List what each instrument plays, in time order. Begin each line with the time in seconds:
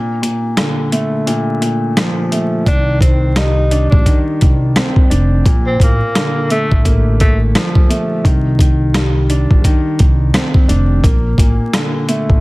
Already playing: grand piano A#2
0.22 grand piano A#2, closed hi-hat
0.57 grand piano D3, cross-stick, snare, closed hi-hat
0.92 grand piano A3, closed hi-hat
1.27 grand piano A#2, closed hi-hat
1.61 grand piano A#2, closed hi-hat
1.97 grand piano F3, cross-stick, snare, closed hi-hat
2.31 grand piano A3, closed hi-hat
2.66 upright bass C2, grand piano D#3, tenor saxophone D4, kick, closed hi-hat
3.01 grand piano D#3, tenor saxophone C4, kick, closed hi-hat
3.36 grand piano G3, tenor saxophone D#4, cross-stick, snare, closed hi-hat
3.71 grand piano D4, closed hi-hat
3.90 upright bass A#1, tenor saxophone D4, kick
4.06 grand piano D#3, kick, closed hi-hat
4.41 upright bass C2, grand piano D#3, kick, closed hi-hat
4.76 grand piano C4, cross-stick, snare, closed hi-hat
4.96 kick
5.10 upright bass F1, grand piano D4, closed hi-hat
5.45 upright bass A#1, grand piano A#2, kick, closed hi-hat
5.67 tenor saxophone C4
5.80 upright bass A1, grand piano A#2, tenor saxophone A#3, kick, closed hi-hat
6.15 grand piano D3, cross-stick, snare, closed hi-hat
6.50 grand piano A3, tenor saxophone A3, closed hi-hat
6.72 upright bass A1, kick
6.85 grand piano A#3, kick, closed hi-hat
7.20 tenor saxophone A3, kick, closed hi-hat
7.55 grand piano F3, cross-stick, snare, closed hi-hat
7.75 kick
7.90 grand piano A3, closed hi-hat
8.24 upright bass C2, grand piano D#3, kick, closed hi-hat
8.59 grand piano D#3, kick, closed hi-hat
8.94 grand piano G3, cross-stick, snare, closed hi-hat
9.30 grand piano D4, closed hi-hat
9.51 upright bass A#1, kick
9.64 grand piano D#3, kick, closed hi-hat
9.99 upright bass C2, grand piano D#3, kick, closed hi-hat
10.34 grand piano C4, cross-stick, snare, closed hi-hat
10.54 kick
10.68 upright bass F1, grand piano D4, closed hi-hat
11.04 upright bass A#1, grand piano A#3, kick, closed hi-hat
11.38 upright bass A1, grand piano A#2, kick, closed hi-hat
11.73 grand piano D3, cross-stick, snare, closed hi-hat
12.09 grand piano A3, closed hi-hat
12.30 upright bass A1, kick